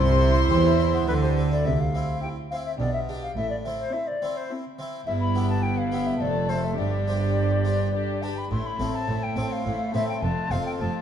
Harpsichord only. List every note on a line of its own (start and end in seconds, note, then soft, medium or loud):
0.00 0.45 C3 medium
0.06 0.21 C5 medium
0.20 0.35 E4 medium
0.35 0.50 C5 medium
0.49 1.04 E3 medium
0.49 0.65 G4 medium
0.65 0.80 E4 medium
0.79 0.94 C4 soft
0.93 1.08 B3 soft
1.08 1.62 D3 medium
1.08 1.23 C4 medium
1.22 1.38 G4 medium
1.37 1.52 C4 soft
1.51 1.66 E4 medium
1.66 2.10 C3 soft
1.95 2.35 C4 soft
1.95 2.36 E4 soft
2.52 2.72 C4 soft
2.52 2.73 E4 soft
2.80 3.25 B2 soft
3.09 3.29 D4 soft
3.09 3.29 G4 soft
3.37 3.81 A2 soft
3.65 4.06 C4 soft
3.65 4.07 E4 soft
4.22 4.63 C4 soft
4.22 4.63 E4 soft
4.79 4.99 C4 soft
4.79 5.00 E4 soft
5.07 6.17 G2 soft
5.35 5.76 B3 soft
5.35 5.76 E4 soft
5.35 5.77 G4 soft
5.92 6.13 B3 soft
5.92 6.13 E4 soft
5.92 6.13 G4 soft
6.20 6.74 F2 soft
6.49 6.70 A3 soft
6.49 6.70 A4 soft
6.49 6.70 C5 soft
6.78 8.27 G2 soft
7.07 7.49 D4 soft
7.07 7.49 G4 soft
7.07 7.50 C5 soft
7.64 7.85 D4 soft
7.64 7.86 G4 soft
7.64 7.86 C5 soft
8.22 8.43 D4 soft
8.22 8.44 G4 soft
8.22 8.44 B4 soft
8.51 8.77 A2 soft
8.80 9.06 A2 soft
8.80 9.21 C4 soft
8.80 9.21 E4 soft
8.80 9.22 C5 soft
9.08 9.34 A2 soft
9.36 9.62 A2 soft
9.36 9.78 C4 soft
9.36 9.78 E4 soft
9.36 9.78 C5 soft
9.65 9.91 A2 soft
9.94 10.20 A2 soft
9.94 10.15 C4 soft
9.94 10.15 E4 soft
9.94 10.15 C5 soft
10.23 10.48 F2 soft
10.51 10.77 F2 medium
10.51 10.92 C4 soft
10.51 10.92 F4 soft
10.51 10.92 C5 soft
10.80 11.02 F2 soft